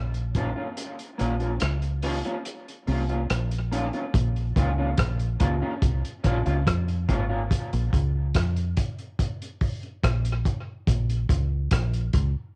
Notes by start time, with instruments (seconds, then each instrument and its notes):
Already playing: fingered electric bass A#1
0.14 closed hi-hat
0.35 clean electric guitar A#3 C#4 F4, kick, closed hi-hat
0.56 clean electric guitar A#3 C#4 F4
0.77 closed hi-hat
0.99 closed hi-hat
1.18 fingered electric bass A#1, clean electric guitar A#3 C#4 F4, closed hi-hat
1.40 clean electric guitar A#3 C#4 F4, closed hi-hat
1.60 fingered electric bass C#2, cross-stick, closed hi-hat
1.82 closed hi-hat
2.03 clean electric guitar A#3 C#4 F4, open hi-hat
2.25 clean electric guitar A#3 C#4 F4, closed hi-hat
2.45 closed hi-hat
2.68 closed hi-hat
2.87 fingered electric bass C2, clean electric guitar A#3 C#4 F4, open hi-hat
3.09 clean electric guitar A#3 C#4 F4, closed hi-hat
3.30 fingered electric bass A#1, cross-stick, closed hi-hat
3.51 closed hi-hat
3.71 clean electric guitar A#3 C#4 F4, closed hi-hat
3.93 clean electric guitar A#3 C#4 F4, closed hi-hat
4.14 fingered electric bass A#1, kick, closed hi-hat
4.36 closed hi-hat
4.56 fingered electric bass C#2, clean electric guitar A#3 C#4 F4, kick, closed hi-hat
4.78 clean electric guitar A#3 C#4 F4
4.97 fingered electric bass A#1, kick, cross-stick, closed hi-hat
5.19 closed hi-hat
5.40 fingered electric bass C#2, clean electric guitar A#3 C#4 F4, kick, closed hi-hat
5.62 clean electric guitar A#3 C#4 F4
5.82 fingered electric bass C2, kick, closed hi-hat
6.05 closed hi-hat
6.24 fingered electric bass A#1, clean electric guitar A#3 C#4 F4, kick, cross-stick, closed hi-hat
6.46 fingered electric bass C#2, clean electric guitar A#3 C#4 F4, closed hi-hat
6.67 fingered electric bass F2, kick, cross-stick, closed hi-hat
6.88 closed hi-hat
7.09 fingered electric bass G#1, clean electric guitar A#3 C#4 F4, kick, closed hi-hat
7.29 clean electric guitar A#3 C#4 F4
7.51 kick, closed hi-hat
7.73 fingered electric bass A#1, closed hi-hat
7.93 fingered electric bass C#2, kick, closed hi-hat
8.34 fingered electric bass F2, kick, cross-stick, closed hi-hat
8.56 closed hi-hat
8.77 kick, closed hi-hat
8.99 closed hi-hat
9.19 kick, closed hi-hat
9.42 closed hi-hat
9.61 kick, open hi-hat
9.83 closed hi-hat
10.04 fingered electric bass A#1, kick, cross-stick, closed hi-hat
10.25 closed hi-hat
10.45 kick, closed hi-hat
10.87 fingered electric bass A#1, kick, closed hi-hat
11.10 closed hi-hat
11.29 fingered electric bass C#2, kick, closed hi-hat
11.71 fingered electric bass A#1, kick, cross-stick, closed hi-hat
11.93 closed hi-hat
12.13 fingered electric bass C#2, kick, closed hi-hat